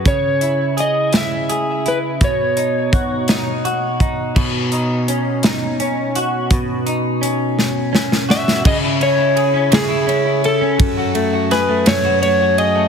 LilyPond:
<<
  \new Staff \with { instrumentName = "Electric slide guitar" } { \time 6/8 \key b \mixolydian \tempo 4. = 56 cis''4 dis''8 e''4 b'8 | cis''2 r4 | r2. | r2 r8 e''8 |
dis''8 cis''4 gis'4 a'8~ | a'4 b'8 cis''8 cis''8 dis''8 | }
  \new Staff \with { instrumentName = "Clean electric guitar" } { \time 6/8 \key b \mixolydian cis8 e'8 gis'8 e'8 gis'8 e'8 | b,8 dis'8 fis'8 dis'8 fis'8 dis'8 | b,8 dis'8 cis'8 dis'8 cis'8 fis'8 | b,8 dis'8 cis'4 cis'8 fis'8 |
cis16 e'16 cis'16 e'16 gis'16 cis'16 cis16 e'16 cis'16 e'8 cis'16 | fis,16 fis'16 a16 fis'16 gis'16 a16 fis,16 fis'16 a16 fis'16 gis'16 a16 | }
  \new DrumStaff \with { instrumentName = "Drums" } \drummode { \time 6/8 <hh bd>8 hh8 hh8 <hh sn>8 hh8 hh8 | <hh bd>8 hh8 <hh bd>8 <hh sn>8 hh8 <hh bd>8 | <cymc bd>8 hh8 hh8 <hh sn>8 hh8 hh8 | <hh bd>8 hh8 hh8 sn8 sn16 sn16 sn16 sn16 |
<cymc bd>8 cymr8 cymr8 <cymr sn>8 cymr8 cymr8 | <bd cymr>8 cymr8 <cymr sn>8 <cymr sn>8 cymr8 cymr8 | }
>>